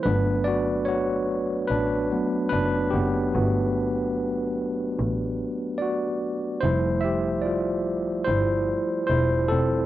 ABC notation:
X:1
M:4/4
L:1/8
Q:"Swing 16ths" 1/4=73
K:Gdor
V:1 name="Tine electric piano"
[D=B] [^Fd] [F_d]2 [=DB]2 [DB] [=B,G]- | [=B,G]6 [^Fd]2 | [Ec] [Ge] [Fd]2 [Ec]2 [Ec] [CA] |]
V:2 name="Tine electric piano"
[^F,A,=B,] z4 [F,A,B,] z2 | [A,=B,^F] z6 z | [F,G,A,]3 z4 z |]
V:3 name="Double bass" clef=bass
G,,,4 A,,, z ^F,,, F,,, | G,,,4 A,,, z3 | F,,,4 G,,, z E,,, E,,, |]